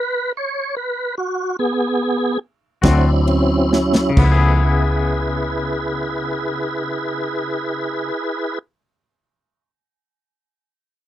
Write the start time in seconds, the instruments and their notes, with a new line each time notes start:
Already playing: tonewheel organ B4
0.37 tonewheel organ C#5
0.76 tonewheel organ B4
1.18 tonewheel organ F#4
1.59 tonewheel organ B3 G#4
2.82 fingered electric bass D2, clean electric guitar D3 A3 C4 F#4, tonewheel organ F#3 C4 D4 E4, kick, snare, ride
3.27 tonewheel organ C#4, ride
3.68 tonewheel organ C4
3.73 tonewheel organ C#4, snare
3.95 snare
4.09 clean electric guitar C#3
4.17 fingered electric bass C#2, tonewheel organ F3 A3 E4 B4, clean electric guitar B3, kick, crash
4.25 clean electric guitar E4
4.32 clean electric guitar G#4
4.62 tonewheel organ E4 G#4 B4